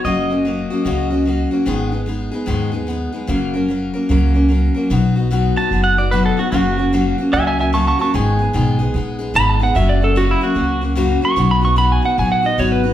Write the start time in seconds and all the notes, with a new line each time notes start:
0.04 F#1 F#2 C#3 F#3 A#3 C#4 F#4 D#5
0.30 F#3 A#3 C#4 F#4
0.45 F#3 A#3 C#4 F#4
0.70 F#3 A#3 C#4 F#4
0.85 C#2 F#2 C#3 F#3 A#3 C#4 F#4
1.10 F#3 A#3 C#4 F#4
1.25 F#3 A#3 C#4 F#4
1.51 F#3 A#3 C#4 F#4
1.66 G#1 G#2 D#3 G#3 B3 D#4 G#4
1.91 G#3 B3 D#4 G#4
2.06 G#3 B3 D#4 G#4
2.31 G#3 B3 D#4 G#4
2.46 D#2 G#2 D#3 G#3 B3 D#4 G#4
2.72 G#3 B3 D#4 G#4
2.87 G#3 B3 D#4 G#4
3.12 G#3 B3 D#4 G#4
3.27 F#1 F#2 C#3 F#3 A#3 C#4 A#4
3.54 F#3 A#3 C#4 A#4
3.68 F#3 A#3 C#4 A#4
3.93 F#3 A#3 C#4 A#4
4.09 C#2 F#2 C#3 F#3 A#3 C#4 A#4
4.34 F#3 A#3 C#4 A#4
4.49 F#3 A#3 C#4 A#4
4.74 F#3 A#3 C#4 A#4
4.90 B1 B2 F#3 B3 D#4 F#4
5.16 B3 D#4 F#4
5.31 B2 F#3 B3 D#4 F#4
5.56 B3 D#4 F#4 A5
5.71 F#1 F#3 B3 D#4 F#4
5.84 F#5
5.97 B3 D#4 F#4 D5
6.11 B2 F#3 B3 D#4 F#4 B4
6.25 A4
6.37 B3 D#4 F#4
6.52 F#1 F#2 C#3 F#3 A#3 C#4 F#4
6.78 F#3 A#3 C#4 F#4
6.93 F#2 C#3 F#3 A#3 C#4 F#4
7.18 F#3 A#3 C#4 F#4
7.33 C#2 F#3 A#3 C#4 F#4 E5 G#5
7.47 E5 G#5
7.58 F#3 A#3 C#4 F#4 E5 G#5
7.73 F#2 C#3 F#3 A#3 C#4 F#4 A5 C#6
7.87 A5 C#6
7.99 F#3 A#3 C#4 F#4 A5 C#6
8.14 G#1 G#2 D#3 G#3 B3 D#4 G#4 G#5
8.39 G#3 B3 D#4 G#4
8.53 B1 G#2 D#3 G#3 B3 D#4 G#4
8.79 G#3 B3 D#4 G#4
8.94 A#1 G#3 B3 D#4 G#4
9.19 G#3 B3 D#4 G#4
9.34 G#1 G#2 D#3 G#3 B3 D#4 G#4 B5
9.50 A5
9.60 G#3 B3 D#4 G#4 F#5
9.75 F#1 F#2 C#3 F#3 A#3 C#4 F#4 E5
9.89 D5
10.00 F#3 A#3 C#4 F#4 A4
10.15 F#2 C#3 F#3 A#3 C#4 F#4
10.31 E4
10.41 F#3 A#3 C#4 F#4
10.55 C#2 F#3 A#3 C#4 F#4
10.81 F#3 A#3 C#4 F#4
10.96 F#2 C#3 F#3 A#3 C#4 F#4
11.21 F#3 A#3 C#4 F#4
11.25 C#6
11.36 B1 B2 F#3 B3 D#4 F#4
11.51 B5
11.61 B3 D#4 F#4 C#6
11.76 B2 F#3 B3 D#4 F#4 B5
11.92 G#5
12.02 B3 D#4 F#4 F#5
12.18 A#1 F#3 B3 D#4 F#4 G#5
12.32 F#5
12.42 B3 D#4 F#4 D#5
12.58 G#1 B2 F#3 B3 D#4 F#4 C#5
12.72 B4
12.84 B3 D#4 F#4